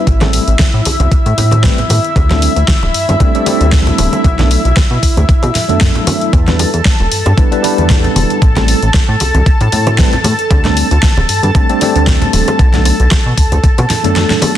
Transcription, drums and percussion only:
0.07 kick, closed hi-hat
0.21 snare, closed hi-hat, muted conga, high conga, low conga
0.33 open hi-hat
0.48 closed hi-hat
0.59 kick, snare, closed hi-hat, muted conga, high conga
0.85 open hi-hat, muted conga
1.00 closed hi-hat, high conga
1.12 kick, closed hi-hat
1.26 closed hi-hat, muted conga
1.38 open hi-hat, low conga
1.51 closed hi-hat, muted conga, high conga
1.64 kick, snare, closed hi-hat
1.78 closed hi-hat, low conga
1.90 open hi-hat, muted conga, high conga
2.04 closed hi-hat
2.16 kick, closed hi-hat, muted conga
2.31 snare, closed hi-hat, high conga, low conga
2.42 open hi-hat
2.56 closed hi-hat, muted conga
2.68 kick, snare, closed hi-hat, high conga
2.83 muted conga
2.94 open hi-hat
3.09 closed hi-hat, high conga
3.20 kick, closed hi-hat, muted conga
3.35 closed hi-hat
3.46 open hi-hat, muted conga
3.61 closed hi-hat, high conga
3.72 kick, snare, closed hi-hat, low conga
3.87 closed hi-hat, muted conga, low conga
3.98 open hi-hat, high conga
4.13 closed hi-hat, muted conga
4.24 kick, closed hi-hat
4.39 snare, closed hi-hat, high conga, low conga
4.51 open hi-hat, muted conga
4.65 closed hi-hat
4.77 kick, snare, closed hi-hat, muted conga, high conga
5.03 kick, open hi-hat
5.17 closed hi-hat, muted conga, high conga
5.29 kick, closed hi-hat
5.43 closed hi-hat, muted conga
5.55 snare, open hi-hat, low conga
5.69 closed hi-hat, high conga
5.81 kick, snare, closed hi-hat, muted conga
5.95 closed hi-hat, low conga
6.07 open hi-hat, muted conga, high conga
6.21 closed hi-hat
6.33 kick, closed hi-hat, muted conga
6.48 snare, closed hi-hat, high conga, low conga
6.59 open hi-hat, muted conga
6.74 closed hi-hat
6.85 kick, snare, closed hi-hat, high conga
7.00 muted conga
7.12 open hi-hat
7.26 closed hi-hat, muted conga, high conga
7.38 kick, closed hi-hat
7.52 closed hi-hat
7.64 open hi-hat, muted conga
7.78 closed hi-hat, high conga
7.90 kick, snare, closed hi-hat, muted conga, low conga
8.04 closed hi-hat, low conga
8.16 open hi-hat, high conga
8.30 closed hi-hat, muted conga
8.42 kick, closed hi-hat
8.56 snare, closed hi-hat, muted conga, high conga, low conga
8.68 open hi-hat
8.82 closed hi-hat
8.94 kick, snare, closed hi-hat, muted conga, high conga
9.20 open hi-hat, muted conga
9.34 closed hi-hat, high conga
9.46 kick, closed hi-hat
9.61 closed hi-hat, muted conga
9.72 open hi-hat, low conga
9.86 closed hi-hat, muted conga, high conga
9.98 kick, snare, closed hi-hat
10.13 closed hi-hat, low conga
10.24 open hi-hat, muted conga, high conga
10.39 closed hi-hat
10.51 kick, closed hi-hat, muted conga
10.64 snare, closed hi-hat, high conga, low conga
10.77 open hi-hat
10.91 closed hi-hat, muted conga
11.03 kick, snare, closed hi-hat, high conga
11.17 muted conga
11.29 open hi-hat
11.43 closed hi-hat, high conga
11.55 kick, closed hi-hat, muted conga
11.69 closed hi-hat
11.81 open hi-hat, muted conga
11.96 closed hi-hat, high conga
12.07 kick, snare, closed hi-hat, low conga
12.22 closed hi-hat, muted conga, low conga
12.33 open hi-hat, high conga
12.48 closed hi-hat, muted conga
12.59 kick, closed hi-hat
12.73 snare, closed hi-hat, high conga, low conga
12.85 open hi-hat, muted conga
13.00 closed hi-hat
13.11 kick, snare, closed hi-hat, muted conga, high conga
13.38 kick, open hi-hat
13.52 closed hi-hat, muted conga, high conga
13.64 kick, closed hi-hat
13.78 closed hi-hat, muted conga
13.90 snare, open hi-hat, low conga
14.04 closed hi-hat, high conga
14.16 snare, closed hi-hat, muted conga
14.30 snare, closed hi-hat, low conga
14.42 open hi-hat, muted conga, high conga

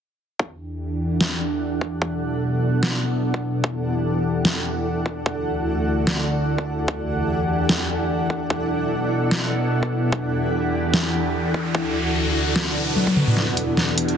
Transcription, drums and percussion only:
0.40 kick
1.21 snare
1.81 kick
2.02 kick
2.83 snare
3.34 kick
3.64 kick
4.45 snare
5.06 kick
5.26 kick
6.07 snare
6.58 kick
6.88 kick
7.69 snare
8.30 kick
8.50 kick
9.31 snare
9.83 kick
10.12 kick
10.94 snare
11.54 kick
11.75 kick
12.56 snare
12.96 high tom
13.07 kick, high tom
13.17 mid tom
13.27 mid tom
13.37 snare
13.57 closed hi-hat
13.77 snare
13.98 closed hi-hat
14.08 closed hi-hat

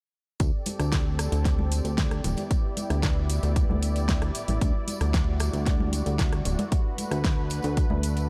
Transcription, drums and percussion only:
0.40 kick, closed hi-hat, tambourine
0.66 open hi-hat, tambourine, high conga
0.80 cross-stick, closed hi-hat, tambourine
0.92 kick, snare, closed hi-hat, tambourine
1.19 cross-stick, open hi-hat, tambourine
1.32 closed hi-hat, tambourine
1.45 kick, snare, closed hi-hat, tambourine
1.59 high conga
1.72 open hi-hat, tambourine
1.85 closed hi-hat, tambourine
1.98 kick, snare, closed hi-hat, tambourine
2.11 cross-stick, closed hi-hat
2.24 open hi-hat, tambourine, low conga
2.37 closed hi-hat, tambourine, high conga
2.51 kick, closed hi-hat, tambourine
2.77 open hi-hat, tambourine, high conga
2.90 cross-stick, closed hi-hat, tambourine
3.03 kick, snare, closed hi-hat, tambourine
3.29 open hi-hat, tambourine
3.43 closed hi-hat, tambourine
3.56 kick, closed hi-hat, tambourine
3.71 high conga
3.83 open hi-hat, tambourine
3.96 closed hi-hat, tambourine
4.09 kick, snare, closed hi-hat, tambourine
4.22 cross-stick, closed hi-hat
4.35 open hi-hat, tambourine
4.48 open hi-hat, tambourine, high conga
4.61 kick, closed hi-hat, tambourine
4.87 open hi-hat, tambourine, high conga
5.01 cross-stick, closed hi-hat, tambourine
5.13 kick, snare, closed hi-hat, tambourine
5.40 cross-stick, open hi-hat, tambourine
5.53 closed hi-hat, tambourine
5.66 kick, snare, closed hi-hat, tambourine
5.80 high conga
5.93 open hi-hat, tambourine
6.06 closed hi-hat, tambourine
6.19 kick, snare, closed hi-hat, tambourine
6.33 cross-stick, closed hi-hat
6.45 open hi-hat, tambourine, low conga
6.59 closed hi-hat, tambourine, high conga
6.72 kick, closed hi-hat, tambourine
6.98 open hi-hat, tambourine, high conga
7.11 cross-stick, closed hi-hat, tambourine
7.25 kick, snare, closed hi-hat, tambourine
7.50 open hi-hat, tambourine
7.63 closed hi-hat, tambourine
7.77 kick, closed hi-hat, tambourine
7.90 high conga
8.03 open hi-hat, tambourine
8.17 closed hi-hat, tambourine

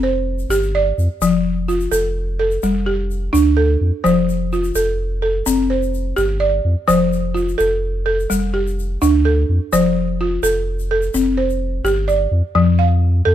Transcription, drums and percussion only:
0.39 shaker
0.51 shaker
0.63 shaker
0.99 shaker
1.22 shaker
1.69 shaker
1.80 shaker
1.92 shaker
2.51 shaker
2.63 shaker
3.11 shaker
3.35 shaker
4.05 shaker
4.29 shaker
4.53 shaker
4.64 shaker
4.75 shaker
5.47 shaker
5.83 shaker
5.94 shaker
6.17 shaker
6.89 shaker
7.13 shaker
7.37 shaker
7.49 shaker
7.60 shaker
8.20 shaker
8.31 shaker
8.67 shaker
8.79 shaker
9.02 shaker
9.73 shaker
10.44 shaker
10.79 shaker
11.02 shaker
11.14 shaker
11.50 shaker
11.85 shaker
12.09 shaker

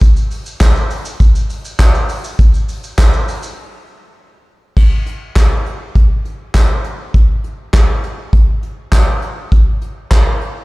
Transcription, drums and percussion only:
0.01 kick, closed hi-hat, shaker
0.16 shaker
0.31 open hi-hat, shaker
0.46 shaker
0.60 kick, snare, clap, tambourine, shaker
0.76 shaker
0.91 open hi-hat, shaker
1.05 shaker
1.20 kick, closed hi-hat, shaker
1.35 shaker
1.50 open hi-hat, shaker
1.65 shaker
1.79 kick, snare, clap, closed hi-hat, tambourine, shaker
1.94 shaker
2.09 open hi-hat, shaker
2.24 shaker
2.39 kick, closed hi-hat, shaker
2.54 shaker
2.69 open hi-hat, shaker
2.83 shaker
2.98 kick, snare, clap, closed hi-hat, tambourine, shaker
3.13 shaker
3.28 open hi-hat, shaker
3.43 shaker
4.77 kick, crash
5.06 closed hi-hat
5.36 kick, snare, clap, closed hi-hat, tambourine
5.66 closed hi-hat
5.95 kick, closed hi-hat
6.25 closed hi-hat
6.54 kick, snare, clap, closed hi-hat, tambourine
6.84 closed hi-hat
7.14 kick, closed hi-hat
7.44 closed hi-hat
7.73 kick, snare, clap, closed hi-hat, tambourine
8.03 closed hi-hat
8.33 kick, closed hi-hat
8.63 closed hi-hat
8.92 kick, snare, clap, tambourine
9.22 closed hi-hat
9.52 kick, closed hi-hat
9.81 closed hi-hat
10.11 kick, snare, clap, closed hi-hat, tambourine
10.41 closed hi-hat

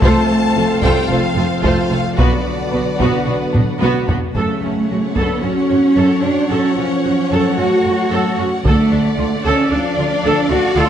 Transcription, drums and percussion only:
0.02 taiko
0.82 taiko
1.64 taiko
2.18 taiko
3.00 taiko
3.54 taiko low-mid
3.82 taiko high
4.09 taiko low
4.35 taiko
5.16 taiko
8.65 taiko

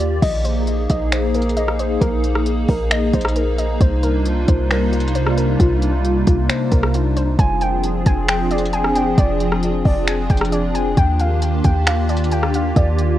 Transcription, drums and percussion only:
0.00 closed hi-hat
0.22 kick, closed hi-hat, crash
0.45 closed hi-hat
0.67 closed hi-hat
0.90 kick, closed hi-hat
1.12 finger snap, closed hi-hat
1.34 closed hi-hat
1.42 closed hi-hat
1.49 closed hi-hat
1.57 closed hi-hat
1.68 cross-stick
1.79 closed hi-hat
2.02 kick, closed hi-hat
2.24 closed hi-hat
2.35 cross-stick
2.46 closed hi-hat
2.69 kick, open hi-hat
2.91 finger snap, closed hi-hat
3.13 kick, closed hi-hat
3.21 cross-stick, closed hi-hat
3.28 closed hi-hat
3.36 closed hi-hat
3.58 closed hi-hat
3.81 kick, closed hi-hat
4.03 closed hi-hat
4.25 closed hi-hat
4.48 kick, closed hi-hat
4.70 finger snap, closed hi-hat
4.93 closed hi-hat
5.00 closed hi-hat
5.08 closed hi-hat
5.15 closed hi-hat
5.27 cross-stick
5.38 closed hi-hat
5.60 kick, closed hi-hat
5.82 closed hi-hat
6.05 closed hi-hat
6.27 kick, closed hi-hat
6.49 finger snap, closed hi-hat
6.72 kick, closed hi-hat
6.83 cross-stick
6.94 closed hi-hat
7.17 closed hi-hat
7.39 kick, closed hi-hat
7.61 closed hi-hat
7.84 closed hi-hat
8.06 kick, closed hi-hat
8.28 finger snap, closed hi-hat
8.51 closed hi-hat
8.58 closed hi-hat
8.66 closed hi-hat
8.73 closed hi-hat
8.84 cross-stick
8.96 closed hi-hat
9.18 kick, closed hi-hat
9.40 closed hi-hat
9.52 cross-stick
9.63 closed hi-hat
9.85 kick, open hi-hat
10.08 finger snap, closed hi-hat
10.30 kick, closed hi-hat
10.37 cross-stick, closed hi-hat
10.45 closed hi-hat
10.52 closed hi-hat
10.75 closed hi-hat
10.97 kick, closed hi-hat
11.19 closed hi-hat
11.42 closed hi-hat
11.64 kick, closed hi-hat
11.87 finger snap, closed hi-hat
12.09 closed hi-hat
12.17 closed hi-hat
12.24 closed hi-hat
12.31 closed hi-hat
12.43 cross-stick
12.54 closed hi-hat
12.76 kick, closed hi-hat
12.99 closed hi-hat

